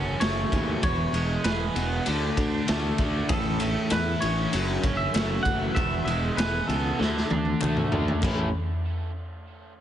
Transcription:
Already playing: fingered electric bass F#1, overdriven electric guitar F#2 C#3 C#4, clean electric guitar A4
0.20 fingered electric bass F#1, overdriven electric guitar F#2 C#3 F#3 A3, clean electric guitar C#5, snare, ride
0.52 fingered electric bass D#2, overdriven electric guitar F#2 C#3 E3 F#3, kick, ride
0.82 fingered electric bass E1, overdriven electric guitar E2 B2 E3, clean electric guitar C#5, kick, ride
1.13 fingered electric bass E1, overdriven electric guitar E2 B2 G#3, ride
1.44 fingered electric bass E1, overdriven electric guitar E2 B2 G#4, clean electric guitar B4, snare, ride
1.75 fingered electric bass E1, overdriven electric guitar E2 B2 B3, ride
2.06 fingered electric bass D2, overdriven electric guitar D3 A3 D4, ride
2.37 fingered electric bass D2, overdriven electric guitar D3 A3 D4, kick, ride
2.68 fingered electric bass D2, overdriven electric guitar D3 A3 D4, snare, ride
2.98 fingered electric bass D2, overdriven electric guitar D3 A3 D4, kick, ride
3.29 fingered electric bass A1, overdriven electric guitar A2 E3 A3, clean electric guitar A4, kick, ride
3.60 overdriven electric guitar A2 E3 A3, clap, ride
3.90 fingered electric bass E2, overdriven electric guitar A2 E3 E4, clean electric guitar B4, snare, clap, ride
4.21 fingered electric bass A1, overdriven electric guitar A2 E3 C#4, clean electric guitar C#5, ride
4.52 fingered electric bass F#1, overdriven electric guitar F#2 C#3 F#3, ride
4.83 fingered electric bass F#1, overdriven electric guitar F#2 C#3 C#4, kick, ride
4.97 clean electric guitar E5
5.14 fingered electric bass F#1, overdriven electric guitar F#2 C#3 F#3 A3, snare, clap, ride
5.43 fingered electric bass F#1, overdriven electric guitar F#2 C#3 E3 F#3, clean electric guitar F#5, kick, ride
5.75 fingered electric bass E1, overdriven electric guitar E2 B2 E3, clean electric guitar E5, kick, ride
6.05 fingered electric bass E1, overdriven electric guitar E2 B2 G#3, clean electric guitar E5, ride
6.37 fingered electric bass E1, overdriven electric guitar E2 B2 G#4, clean electric guitar B4, snare, clap, ride
6.67 fingered electric bass C#2, overdriven electric guitar E2 B2 B3, clean electric guitar A4, ride
6.99 fingered electric bass D2, overdriven electric guitar D3 A3 D4, snare
7.17 snare
7.30 fingered electric bass D2, overdriven electric guitar D3 A3 D4, high tom
7.45 high tom
7.60 fingered electric bass D2, overdriven electric guitar D3 A3 D4, clap, mid tom
7.77 mid tom
7.91 fingered electric bass D2, overdriven electric guitar D3 A3 D4, floor tom
8.08 floor tom
8.22 fingered electric bass A1, overdriven electric guitar A2 E3 A3 C#4 E4 A4, kick, clap, floor tom, crash

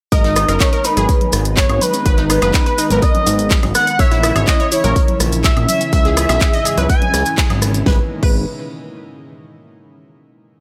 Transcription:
0.12 analog synth bass G#1, analog synth pad D#3 G#3 B3 D#4, synth pluck A#4, analog synth lead D#5, synth bell D#6, kick, closed hi-hat, maracas
0.24 synth pluck D#4, snare, open hi-hat
0.36 synth pluck D#4, cross-stick, closed hi-hat, open hi-hat, high woodblock, maracas
0.49 analog synth bass F#1, synth pluck A#4, closed hi-hat, high woodblock, maracas
0.60 synth pluck D#4, analog synth lead C#5, synth bell C#6, kick, snare, clap, closed hi-hat, high conga, maracas
0.73 synth pluck A#4, closed hi-hat
0.84 synth pluck D#4, analog synth lead B4, synth bell B5, closed hi-hat, open hi-hat, maracas
0.97 analog synth bass G#1, synth pluck G#4, closed hi-hat, low conga, maracas
1.09 kick, closed hi-hat, maracas
1.21 closed hi-hat, low conga
1.32 analog synth bass G#1, cross-stick, closed hi-hat, open hi-hat, maracas
1.45 closed hi-hat, maracas
1.56 analog synth lead C#5, synth bell C#6, kick, snare, clap, closed hi-hat, maracas
1.69 analog synth bass G#1, closed hi-hat, high conga, high woodblock
1.81 analog synth lead B4, synth bell B5, closed hi-hat, open hi-hat, low conga, maracas
1.93 closed hi-hat, high conga, maracas
2.06 analog synth bass G#1, analog synth lead B4, synth pluck B4, synth bell B5, kick, closed hi-hat, maracas
2.17 synth pluck D#4, snare, closed hi-hat
2.30 synth pluck D#4, cross-stick, closed hi-hat, open hi-hat, high woodblock, maracas
2.42 analog synth bass F#1, synth pluck B4, snare, closed hi-hat, high woodblock, maracas
2.54 synth pluck D#4, kick, snare, clap, closed hi-hat, high conga, maracas
2.66 synth pluck B4, open hi-hat
2.78 synth pluck D#4, closed hi-hat, open hi-hat, maracas
2.90 analog synth bass G#1, synth pluck A#4, closed hi-hat, low conga, maracas
3.02 analog synth lead D#5, synth bell D#6, kick, closed hi-hat, maracas
3.15 closed hi-hat, high conga, low conga
3.26 analog synth bass G#1, snare, closed hi-hat, open hi-hat, maracas
3.39 closed hi-hat, maracas
3.50 kick, snare, clap, closed hi-hat, open hi-hat, maracas
3.63 analog synth bass G#1, closed hi-hat, high conga, low conga, high woodblock
3.75 analog synth lead F#5, synth bell F#6, cross-stick, closed hi-hat, open hi-hat, maracas
3.87 closed hi-hat, maracas
3.99 analog synth bass A#1, analog synth pad C#3 E3 C#4 E4, synth pluck C#5, analog synth lead E5, synth bell E6, kick, closed hi-hat, maracas
4.11 synth pluck E4, snare, open hi-hat
4.23 synth pluck E4, cross-stick, closed hi-hat, open hi-hat, high woodblock, maracas
4.36 analog synth bass G#1, synth pluck C#5, closed hi-hat, high woodblock, maracas
4.47 synth pluck E4, analog synth lead D#5, synth bell D#6, kick, snare, clap, closed hi-hat, high conga, maracas
4.60 synth pluck C#5, closed hi-hat
4.72 synth pluck E4, analog synth lead C#5, synth bell C#6, closed hi-hat, open hi-hat, maracas
4.84 analog synth bass A#1, synth pluck A#4, closed hi-hat, low conga, maracas
4.96 kick, closed hi-hat, maracas
5.08 closed hi-hat, low conga
5.20 analog synth bass A#1, cross-stick, closed hi-hat, open hi-hat, maracas
5.32 closed hi-hat, maracas
5.44 analog synth lead E5, synth bell E6, kick, snare, clap, closed hi-hat, maracas
5.57 analog synth bass A#1, closed hi-hat, high conga, high woodblock
5.69 analog synth lead E5, synth bell E6, closed hi-hat, open hi-hat, low conga, maracas
5.81 closed hi-hat, high conga, maracas
5.93 analog synth bass C#2, analog synth pad G#2, analog synth lead E5, synth pluck E5, synth bell E6, kick, closed hi-hat, maracas
6.05 synth pluck G#4, snare, closed hi-hat
6.17 synth pluck G#4, cross-stick, closed hi-hat, open hi-hat, high woodblock, maracas
6.29 analog synth bass B1, synth pluck E5, snare, closed hi-hat, high woodblock, maracas
6.40 synth pluck G#4, kick, snare, clap, closed hi-hat, high conga, maracas
6.53 synth pluck D#5, open hi-hat
6.65 synth pluck G#4, closed hi-hat, open hi-hat, maracas
6.78 analog synth bass C#2, synth pluck B4, closed hi-hat, low conga, maracas
6.89 analog synth lead G#5, synth bell G#6, kick, closed hi-hat, maracas
7.02 closed hi-hat, high conga, low conga
7.14 analog synth bass C#2, cross-stick, snare, closed hi-hat, open hi-hat, maracas
7.26 closed hi-hat, maracas
7.38 kick, snare, clap, closed hi-hat, open hi-hat, maracas
7.50 analog synth bass G#1, closed hi-hat, high conga, low conga, high woodblock
7.62 cross-stick, closed hi-hat, open hi-hat, maracas
7.74 closed hi-hat, maracas
7.86 analog synth bass G#1, analog synth pad B2 D#3 G#3 A#3 D#4, synth pluck B4, kick, snare
8.23 analog synth bass G#1, synth pluck B4, kick, crash

